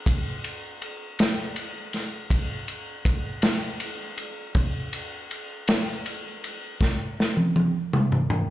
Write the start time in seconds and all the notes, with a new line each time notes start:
0.06 kick, ride
0.44 ride
0.82 ride
1.19 snare, ride
1.56 ride
1.93 snare, ride
2.30 kick, ride
2.68 ride
3.05 kick, ride
3.42 snare, ride
3.80 ride
4.18 ride
4.55 kick, ride
4.93 ride
5.31 ride
5.68 snare, ride
6.06 ride
6.44 ride
6.81 kick, snare
7.20 snare
7.37 high tom
7.56 high tom
7.93 mid tom
8.12 mid tom
8.30 mid tom